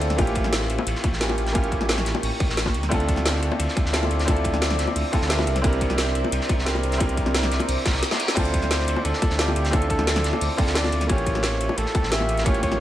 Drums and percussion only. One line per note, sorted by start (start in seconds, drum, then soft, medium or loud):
0.01 closed hi-hat medium
0.01 ride medium
0.10 snare soft
0.10 closed hi-hat soft
0.10 ride soft
0.18 kick loud
0.18 closed hi-hat medium
0.18 ride medium
0.18 high bongo loud
0.27 closed hi-hat soft
0.35 kick medium
0.35 closed hi-hat medium
0.35 ride medium
0.44 snare soft
0.44 high bongo medium
0.53 snare loud
0.53 closed hi-hat medium
0.53 ride medium
0.62 snare soft
0.70 closed hi-hat medium
0.70 ride medium
0.79 high bongo loud
0.87 closed hi-hat medium
0.87 ride medium
0.95 snare soft
1.04 kick loud
1.04 closed hi-hat medium
1.04 ride medium
1.04 high bongo medium
1.13 snare soft
1.21 snare loud
1.21 closed hi-hat medium
1.21 ride medium
1.29 high bongo loud
1.38 closed hi-hat medium
1.38 ride medium
1.46 snare medium
1.46 closed hi-hat soft
1.55 kick loud
1.55 closed hi-hat medium
1.55 ride medium
1.55 high bongo loud
1.63 closed hi-hat soft
1.63 ride soft
1.71 kick medium
1.71 closed hi-hat medium
1.71 ride medium
1.81 snare soft
1.81 high bongo medium
1.89 snare loud
1.89 closed hi-hat medium
1.89 ride loud
1.97 snare soft
1.97 snare medium
2.05 snare medium
2.05 closed hi-hat medium
2.05 ride medium
2.15 high bongo loud
2.23 closed hi-hat medium
2.23 open hi-hat medium
2.40 kick loud
2.40 closed hi-hat medium
2.40 ride medium
2.40 high bongo medium
2.49 snare medium
2.57 snare loud
2.57 closed hi-hat medium
2.57 ride medium
2.66 kick medium
2.66 snare medium
2.66 high bongo loud
2.74 closed hi-hat medium
2.74 ride medium
2.83 snare soft
2.83 closed hi-hat soft
2.83 ride soft
2.91 kick loud
2.91 closed hi-hat medium
2.91 ride medium
2.91 high bongo medium
3.00 closed hi-hat soft
3.08 kick medium
3.08 closed hi-hat medium
3.08 ride medium
3.16 snare soft
3.16 high bongo medium
3.25 snare loud
3.25 closed hi-hat medium
3.25 ride medium
3.35 snare soft
3.42 closed hi-hat medium
3.42 ride medium
3.52 high bongo medium
3.59 closed hi-hat medium
3.59 ride medium
3.68 snare soft
3.77 kick loud
3.77 closed hi-hat medium
3.77 ride medium
3.77 high bongo medium
3.86 snare soft
3.93 snare loud
3.93 closed hi-hat medium
3.93 ride medium
4.03 high bongo medium
4.11 closed hi-hat medium
4.11 ride medium
4.19 snare medium
4.19 closed hi-hat soft
4.28 kick loud
4.28 closed hi-hat loud
4.28 ride medium
4.28 high bongo medium
4.37 closed hi-hat soft
4.37 ride soft
4.44 kick medium
4.44 closed hi-hat medium
4.44 ride medium
4.54 snare soft
4.54 high bongo medium
4.61 snare loud
4.61 closed hi-hat medium
4.61 ride medium
4.71 snare soft
4.71 snare medium
4.79 snare soft
4.79 closed hi-hat medium
4.79 ride medium
4.88 high bongo medium
4.96 closed hi-hat medium
4.96 open hi-hat medium
5.13 kick loud
5.13 closed hi-hat medium
5.13 ride medium
5.13 high bongo medium
5.22 snare soft
5.30 snare loud
5.30 closed hi-hat medium
5.30 ride medium
5.39 snare medium
5.39 high bongo medium
5.47 closed hi-hat medium
5.47 ride medium
5.55 snare soft
5.55 closed hi-hat soft
5.55 ride soft
5.64 kick loud
5.64 closed hi-hat loud
5.64 ride medium
5.64 high bongo medium
5.73 closed hi-hat soft
5.81 kick medium
5.81 closed hi-hat medium
5.81 ride medium
5.90 snare soft
5.90 high bongo medium
5.98 snare loud
5.98 closed hi-hat medium
5.98 ride medium
6.07 snare soft
6.15 closed hi-hat medium
6.15 ride medium
6.24 high bongo medium
6.32 closed hi-hat loud
6.32 ride medium
6.41 snare soft
6.49 kick loud
6.49 closed hi-hat medium
6.49 ride medium
6.49 high bongo medium
6.59 snare soft
6.66 snare loud
6.66 closed hi-hat loud
6.66 ride medium
6.75 high bongo medium
6.83 closed hi-hat medium
6.83 ride medium
6.92 snare medium
6.92 closed hi-hat soft
7.00 kick loud
7.00 closed hi-hat loud
7.00 ride medium
7.00 high bongo medium
7.09 closed hi-hat soft
7.09 ride soft
7.17 kick medium
7.17 closed hi-hat medium
7.17 ride medium
7.26 snare soft
7.26 high bongo medium
7.34 snare loud
7.34 closed hi-hat loud
7.34 ride medium
7.43 snare soft
7.43 snare medium
7.51 snare medium
7.51 closed hi-hat medium
7.51 ride medium
7.60 closed hi-hat soft
7.60 high bongo loud
7.68 closed hi-hat loud
7.68 open hi-hat medium
7.86 kick loud
7.86 snare medium
7.86 snare loud
7.86 closed hi-hat medium
7.86 ride medium
7.86 high bongo medium
7.95 snare soft
8.03 snare medium
8.03 closed hi-hat loud
8.03 ride medium
8.11 snare medium
8.11 snare loud
8.11 ride medium
8.11 high bongo medium
8.19 snare soft
8.19 closed hi-hat medium
8.28 snare medium
8.28 closed hi-hat soft
8.28 ride medium
8.37 kick loud
8.37 closed hi-hat medium
8.37 ride medium
8.37 crash medium
8.37 high bongo loud
8.45 closed hi-hat soft
8.54 kick medium
8.54 closed hi-hat medium
8.54 ride medium
8.62 snare soft
8.62 high bongo medium
8.71 snare loud
8.71 closed hi-hat loud
8.71 ride medium
8.80 snare soft
8.88 closed hi-hat medium
8.88 ride medium
8.96 high bongo medium
9.05 closed hi-hat loud
9.05 ride medium
9.13 snare soft
9.22 kick loud
9.22 closed hi-hat medium
9.22 ride medium
9.22 high bongo medium
9.30 snare soft
9.39 snare loud
9.39 closed hi-hat loud
9.39 ride medium
9.48 high bongo loud
9.56 closed hi-hat medium
9.56 ride medium
9.64 snare medium
9.64 closed hi-hat soft
9.73 kick loud
9.73 closed hi-hat medium
9.73 ride medium
9.73 high bongo loud
9.82 closed hi-hat soft
9.82 ride soft
9.90 kick medium
9.90 closed hi-hat medium
9.90 ride medium
9.99 snare soft
9.99 high bongo medium
10.07 snare loud
10.07 closed hi-hat medium
10.07 ride medium
10.16 snare soft
10.16 snare medium
10.24 snare medium
10.24 closed hi-hat medium
10.24 ride medium
10.33 high bongo loud
10.41 closed hi-hat loud
10.41 open hi-hat medium
10.58 kick loud
10.58 closed hi-hat medium
10.58 ride medium
10.58 high bongo medium
10.67 snare soft
10.75 snare loud
10.75 closed hi-hat loud
10.75 ride medium
10.84 snare medium
10.84 high bongo medium
10.92 closed hi-hat medium
10.92 ride medium
11.01 snare soft
11.01 closed hi-hat soft
11.01 ride soft
11.09 kick loud
11.09 closed hi-hat medium
11.09 ride medium
11.09 high bongo loud
11.18 closed hi-hat soft
11.27 kick medium
11.27 closed hi-hat medium
11.27 ride medium
11.35 snare soft
11.35 high bongo medium
11.43 snare loud
11.43 closed hi-hat medium
11.43 ride loud
11.53 snare soft
11.61 closed hi-hat medium
11.61 ride medium
11.69 high bongo medium
11.78 closed hi-hat medium
11.78 ride medium
11.86 snare soft
11.95 kick loud
11.95 closed hi-hat medium
11.95 ride medium
11.95 high bongo medium
12.03 snare soft
12.12 snare loud
12.12 closed hi-hat loud
12.12 ride medium
12.20 high bongo loud
12.29 closed hi-hat medium
12.29 ride medium
12.37 snare medium
12.37 closed hi-hat soft
12.46 kick loud
12.46 closed hi-hat medium
12.46 ride medium
12.46 high bongo medium
12.54 closed hi-hat soft
12.54 ride soft
12.63 kick medium
12.63 closed hi-hat medium
12.63 ride medium
12.71 snare soft
12.71 high bongo medium